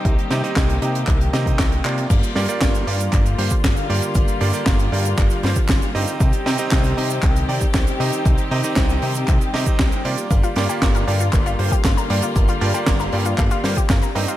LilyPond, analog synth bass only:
\new Staff \with { instrumentName = "Analog synth bass" } { \clef bass \time 4/4 \key g \phrygian \tempo 4 = 117 c,8 c8 c,8 c8 c,8 c8 c,8 c8 | g,,8 g,8 g,,8 g,8 g,,8 g,8 g,,8 g,8 | g,,8 g,8 g,,8 g,8 g,,8 g,8 g,,8 g,8 | c,8 c8 c,8 c8 c,8 c8 c,8 c8 |
c,8 c8 c,8 c8 c,8 c8 c,8 c8 | g,,8 g,8 g,,8 g,8 g,,8 g,8 g,,8 g,8 | g,,8 g,8 g,,8 g,8 g,,8 g,8 g,,8 g,8 | }